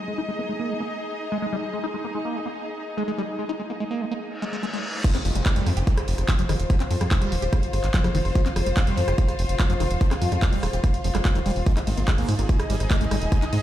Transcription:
Already playing: D#4 G#4 D#5
0.08 G#3
0.18 D#4
0.28 G#3
0.39 A#3
0.49 G#3
0.60 A#3
0.70 G3
0.80 A#3
1.32 G#3
1.42 G#3
1.53 G3
1.73 G#3
1.84 D#4
1.94 G#3
2.04 A#3
2.15 G#3
2.25 A#3
2.35 G3
2.46 A#3
2.97 G#3
3.08 G#3
3.18 G3
3.39 G#3
3.49 D#4
3.60 G#3
3.70 A#3
3.80 G#3
3.91 A#3
4.01 G3
4.11 A#3
4.22 reverse cymbal
4.42 G#3
4.53 G#3
4.63 G#3
4.73 G#3
5.04 F3 F4, kick, closed hi-hat, crash, downlifter
5.15 C4, cross-stick, clap, closed hi-hat
5.25 F1 F3, open hi-hat
5.32 F1 G3 C5, closed hi-hat
5.46 F3, kick, cross-stick, clap, closed hi-hat
5.56 F1 G3, closed hi-hat
5.66 F2 D#3, cross-stick, open hi-hat
5.77 F1 G4, closed hi-hat
5.87 kick, closed hi-hat
5.98 cross-stick, closed hi-hat
6.08 F1, open hi-hat
6.18 F1 F5, cross-stick, closed hi-hat
6.29 F3, kick, clap, closed hi-hat
6.39 F1 F3, closed hi-hat
6.49 F1 D#3, cross-stick, open hi-hat
6.60 D#1, closed hi-hat
6.70 F3, kick, cross-stick, closed hi-hat
6.80 C4, clap, closed hi-hat
6.91 F2 F3, open hi-hat
7.01 F2 G3, cross-stick, closed hi-hat
7.11 F3, kick, clap, closed hi-hat
7.22 D#1 G3, cross-stick, closed hi-hat
7.32 D#1 D#3, open hi-hat
7.42 D#1 G4, closed hi-hat
7.53 kick, cross-stick, closed hi-hat
7.63 closed hi-hat
7.73 G1, cross-stick, open hi-hat
7.84 G1, clap, closed hi-hat
7.94 F3, kick, clap, closed hi-hat
8.04 F1 F3, cross-stick, closed hi-hat
8.15 F1 D#3, open hi-hat
8.25 F1, cross-stick, open hi-hat
8.35 F3, kick, closed hi-hat
8.46 C4, clap, closed hi-hat
8.56 F1 F3, cross-stick, open hi-hat
8.66 F1 G3, closed hi-hat
8.77 F3, kick, cross-stick, clap, closed hi-hat
8.87 F1 G3, closed hi-hat
8.97 F2 D#3, open hi-hat
9.08 F1 G4, cross-stick, closed hi-hat
9.18 kick, closed hi-hat
9.29 cross-stick, closed hi-hat
9.39 F1, open hi-hat
9.49 F1, closed hi-hat
9.59 F3, kick, cross-stick, clap, closed hi-hat
9.70 F1 F3, closed hi-hat
9.80 F1 D#3, cross-stick, open hi-hat
9.91 D#1, closed hi-hat
10.01 F3, kick, closed hi-hat
10.11 C4, cross-stick, clap, closed hi-hat
10.22 F2 F3, open hi-hat
10.32 F2 G3, cross-stick, closed hi-hat
10.42 F3, kick, clap, closed hi-hat
10.53 D#1 G3, closed hi-hat
10.63 D#1 D#3, cross-stick, open hi-hat
10.73 D#1 G4, closed hi-hat
10.84 kick, cross-stick, closed hi-hat
10.94 closed hi-hat
11.04 F1 F3, open hi-hat
11.15 F1 G3, cross-stick, clap, closed hi-hat
11.25 F3, kick, clap, closed hi-hat
11.35 D#1 D#3, cross-stick, closed hi-hat
11.46 D#1 G3, open hi-hat
11.56 D#1, open hi-hat
11.66 G#3 D#4, kick, closed hi-hat
11.77 D#4, cross-stick, clap, closed hi-hat
11.87 G#1 G#3, open hi-hat, ride
11.97 G#1 A#3, closed hi-hat
12.08 G#3, kick, cross-stick, clap, closed hi-hat
12.17 G#1 A#3 G#4, closed hi-hat
12.29 G#2 G3, cross-stick, open hi-hat, ride
12.39 G#1 A#3, closed hi-hat
12.49 kick, closed hi-hat
12.56 D#5, cross-stick, closed hi-hat
12.70 G#1 G3, open hi-hat, ride
12.80 G#1, cross-stick, closed hi-hat
12.91 G#3, kick, clap, closed hi-hat
13.01 G#1 G#3, closed hi-hat
13.11 G#1 G3, cross-stick, open hi-hat, ride
13.22 D#1, closed hi-hat
13.32 G#3, kick, cross-stick, closed hi-hat
13.42 D#4, clap, closed hi-hat
13.53 G#2 G#3, open hi-hat, ride

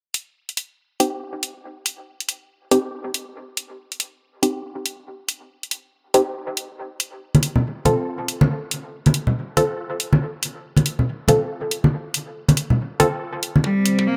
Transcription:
0.14 closed hi-hat
0.49 closed hi-hat
0.57 closed hi-hat
1.00 C4 D#4 G4, closed hi-hat
1.43 closed hi-hat
1.86 closed hi-hat
2.20 closed hi-hat
2.29 closed hi-hat
2.71 C4 D#4 G4, closed hi-hat
3.14 closed hi-hat
3.57 closed hi-hat
3.92 closed hi-hat
4.00 closed hi-hat
4.43 C4 D#4 G4, closed hi-hat
4.86 closed hi-hat
5.29 closed hi-hat
5.63 closed hi-hat
5.71 closed hi-hat
6.14 C4 D#4 G4, closed hi-hat
6.57 closed hi-hat
7.00 closed hi-hat
7.35 closed hi-hat, high conga
7.43 closed hi-hat
7.56 low conga
7.85 C4 F4 A4, closed hi-hat, high conga, low conga
8.28 closed hi-hat
8.41 high conga
8.71 closed hi-hat
9.06 closed hi-hat, high conga
9.14 closed hi-hat
9.27 low conga
9.57 C4 F4 A4, closed hi-hat, high conga
10.00 closed hi-hat
10.13 high conga
10.43 closed hi-hat
10.77 closed hi-hat, high conga
10.86 closed hi-hat
10.99 low conga
11.28 C4 F4 A4, closed hi-hat, high conga, low conga
11.71 closed hi-hat
11.84 high conga
12.14 closed hi-hat
12.49 closed hi-hat, high conga
12.57 closed hi-hat
12.70 low conga
13.00 C4 F4 A4, closed hi-hat, high conga
13.43 closed hi-hat
13.56 high conga
13.64 G3 C4 C5, kick
13.86 closed hi-hat
13.99 kick
14.07 A#3

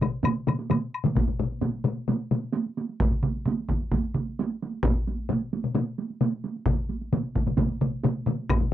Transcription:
0.01 taiko low-mid, taiko mid, high woodblock
0.24 taiko low-mid, taiko mid, taiko high, high woodblock
0.47 taiko low-mid, taiko mid, taiko high, high woodblock
0.59 taiko high
0.70 taiko low-mid, taiko mid, taiko high, high woodblock
0.94 high woodblock
1.04 taiko low-mid, taiko mid, taiko high
1.15 taiko, taiko low-mid, taiko high
1.28 taiko low-mid, taiko high
1.39 taiko low-mid
1.52 taiko high
1.61 taiko low-mid, taiko high
1.75 taiko high
1.85 taiko low-mid, taiko high
1.97 taiko high
2.08 taiko low-mid, taiko high
2.31 taiko low-mid, taiko high
2.44 taiko high
2.53 taiko high
2.66 taiko high
2.77 taiko high
2.89 taiko high
3.00 taiko, taiko mid, taiko high
3.11 taiko mid
3.23 taiko mid, taiko high
3.36 taiko high
3.46 taiko mid, taiko high
3.60 taiko high
3.69 taiko, taiko mid, taiko high
3.83 taiko high
3.92 taiko, taiko mid, taiko high
4.14 taiko mid, taiko high
4.28 taiko high
4.39 taiko high
4.51 taiko high
4.62 taiko high
4.74 taiko high
4.83 taiko, taiko low-mid, taiko high
5.07 taiko high
5.18 taiko high
5.29 taiko low-mid, taiko high
5.41 taiko high
5.53 taiko high
5.64 taiko low-mid
5.75 taiko low-mid, taiko high
5.98 taiko high
6.10 taiko high
6.21 taiko low-mid, taiko high
6.34 taiko high
6.44 taiko high
6.56 taiko high
6.66 taiko, taiko low-mid, taiko mid, taiko high
6.78 taiko high
6.90 taiko high
7.01 taiko high
7.13 taiko low-mid, taiko mid, taiko high
7.23 taiko high
7.35 taiko, taiko low-mid, taiko mid, taiko high
7.46 taiko low-mid, taiko mid, taiko high
7.57 taiko, taiko low-mid, taiko mid, taiko high
7.68 taiko high
7.81 taiko low-mid, taiko mid, taiko high
7.92 taiko high
8.04 taiko low-mid, taiko mid, taiko high
8.16 taiko high
8.26 taiko low-mid, taiko mid, taiko high
8.39 taiko high
8.49 taiko, taiko low-mid, taiko high, high woodblock
8.61 taiko low-mid, taiko high

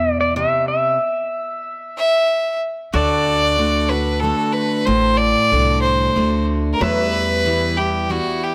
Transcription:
Already playing: E2 B2 E5
0.21 D5
0.36 C3 E5
0.68 E5
1.97 E5
2.93 D2 D3 F#4 A4 D5
3.58 D3 A3 D4 F#4
3.89 D4 F#4 B4
4.20 D3 A3 A4
4.24 D4 F#4
4.52 B4
4.85 A1 A2 C5
5.16 D5
5.51 C2 D3 A3 D4 F#4
5.82 C5
6.15 D2 D3 A3 D4 F#4
6.73 A#4
6.80 E2 F#3 B4 E5
7.01 G3
7.45 E3 G3 B3 E4
7.77 B3 E4 G4
8.09 E3 G3 B3 E4 F#4
8.43 G4

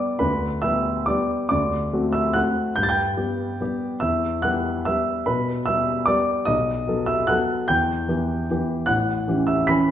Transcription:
Already playing: G3 B3 G4 D5 D6
0.19 D2 B4 B5
0.62 G3 B3 G4 E5 E6
1.06 G3 B3 G4 D5 D6
1.49 D2 D5 D6
1.93 A3 C4 F#4
2.13 E5 E6
2.33 A3 C4 F#4 F#5 F#6
2.76 G2 G6
2.83 A6
2.89 G5 G6
3.17 G3 B3 G4
3.61 G3 B3 G4
4.00 E2 E5 E6
4.42 G3 B3 G4 F#5 F#6
4.85 G3 B3 G4 E5 E6
5.26 B2 B4 B5
5.66 G3 B3 G4 E5 E6
6.06 G3 B3 G4 D5 D6
6.45 B1 D#5 D#6
6.88 F#3 B3 A4
7.06 E5 E6
7.27 F#3 B3 A4 F#5 F#6
7.68 E2 G5 G6
8.08 E3 B3 G4
8.51 E3 B3 G4
8.86 A1 F#5 F#6
9.28 E3 C#4 G4
9.47 E5 E6
9.67 E3 C#4 G4 B5 B6

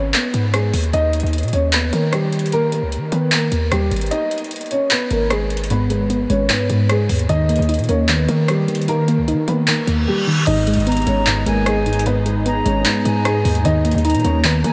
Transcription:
Already playing: G#1 C#4 C#5, downlifter
0.14 B3 B4, clap, closed hi-hat
0.34 G#2, closed hi-hat
0.54 G#3 G#4, cross-stick, closed hi-hat
0.74 D#2, closed hi-hat, open hi-hat
0.83 closed hi-hat
0.93 D#2 D#4 D#5, closed hi-hat
1.13 closed hi-hat
1.20 D#2, closed hi-hat
1.27 closed hi-hat
1.33 closed hi-hat
1.38 closed hi-hat
1.43 A#2, closed hi-hat
1.48 closed hi-hat
1.53 D#2 C#4 C#5, closed hi-hat
1.73 B3 B4, clap, closed hi-hat
1.93 D#3 A#3 A#4, closed hi-hat
2.13 G3 G4, cross-stick, closed hi-hat
2.33 closed hi-hat
2.39 closed hi-hat
2.46 closed hi-hat
2.52 A#3 A#4, closed hi-hat
2.72 A#3 A#4, closed hi-hat
2.82 C#2
2.92 closed hi-hat
2.97 D#3
3.12 D#3 B3 B4, closed hi-hat
3.32 A#3 A#4, clap, closed hi-hat
3.52 D#2, closed hi-hat
3.72 D#2 G3 G4, cross-stick, closed hi-hat
3.91 G#1, closed hi-hat
3.96 closed hi-hat
4.01 closed hi-hat
4.06 closed hi-hat
4.11 D#4 D#5, closed hi-hat
4.31 closed hi-hat
4.38 closed hi-hat
4.44 closed hi-hat
4.51 closed hi-hat
4.56 closed hi-hat
4.61 closed hi-hat
4.66 closed hi-hat
4.71 C#4 C#5, closed hi-hat
4.91 B3 B4, clap, closed hi-hat
5.11 G#1 A#3 A#4, closed hi-hat
5.30 G#3 G#4, cross-stick, closed hi-hat
5.50 closed hi-hat
5.57 closed hi-hat
5.64 closed hi-hat
5.70 G#2 B3 B4, closed hi-hat
5.90 G#3 B3 B4, closed hi-hat
6.10 B3, closed hi-hat
6.30 G#1 G#3 C#4 C#5, closed hi-hat
6.50 G#2 B3 B4, clap, closed hi-hat
6.70 G#2 G#3, closed hi-hat
6.89 G#3 G#4, cross-stick, closed hi-hat
7.09 D#2 G#2, closed hi-hat, open hi-hat
7.19 closed hi-hat
7.29 D#2 D#3 D#4 D#5, closed hi-hat
7.49 A#3, closed hi-hat
7.56 D#2, closed hi-hat
7.62 closed hi-hat
7.69 D#4, closed hi-hat
7.74 closed hi-hat
7.79 A#2, closed hi-hat
7.84 closed hi-hat
7.89 D#2 A#3 C#4 C#5, closed hi-hat
8.09 D#3 B3 B4, clap, closed hi-hat
8.28 D#3 A#3 A#4, closed hi-hat
8.48 G3 G4, cross-stick, closed hi-hat
8.68 D#3, closed hi-hat
8.75 closed hi-hat
8.82 closed hi-hat
8.88 D#3 A#3 A#4, closed hi-hat
9.08 A#3 A#4, closed hi-hat
9.18 C#2
9.28 D#4, closed hi-hat
9.33 D#3
9.48 D#3 A#3 B3 B4, closed hi-hat
9.68 D#3 A#3 A#4, clap, closed hi-hat, reverse cymbal
9.87 D#2 A#3, closed hi-hat
10.07 G3 G4
10.27 D#3
10.47 G#1 G#2 B3 D#4 G#4 D#5, closed hi-hat, crash
10.67 G#3, closed hi-hat
10.74 G#1, closed hi-hat
10.80 closed hi-hat
10.87 B3 A#5, closed hi-hat
10.92 closed hi-hat
10.97 closed hi-hat
11.02 closed hi-hat
11.07 G#1 G#3 C#4 C#5, closed hi-hat
11.27 G#2 B3 B4, clap, closed hi-hat
11.46 G#1 G#3 A#3 A#4 G#5, closed hi-hat
11.66 G#3 G#4, cross-stick, closed hi-hat
11.86 G#2, closed hi-hat
11.93 closed hi-hat
11.99 closed hi-hat
12.06 G#2 B3 B4, closed hi-hat
12.26 G#3 B3 B4, closed hi-hat
12.46 B3 A#5, closed hi-hat
12.65 G#1 G#3 C#4 C#5, closed hi-hat
12.85 G#2 B3 B4, clap, closed hi-hat
13.05 G#2 G#3 G#5, closed hi-hat
13.25 G#3 G#4, cross-stick, closed hi-hat
13.45 D#2 G#2, closed hi-hat, open hi-hat
13.55 closed hi-hat
13.65 D#2 D#3 G3 D#4 A#4 D#5 A#5, closed hi-hat
13.85 A#3, closed hi-hat
13.91 D#2, closed hi-hat
13.98 closed hi-hat
14.05 D#4 A#5, closed hi-hat
14.10 closed hi-hat
14.15 A#2, closed hi-hat
14.20 closed hi-hat
14.25 D#2 A#3 C#4 C#5, closed hi-hat
14.44 D#3 B3 B4, clap, closed hi-hat
14.64 D#3 A#3 A#4 G#5, closed hi-hat

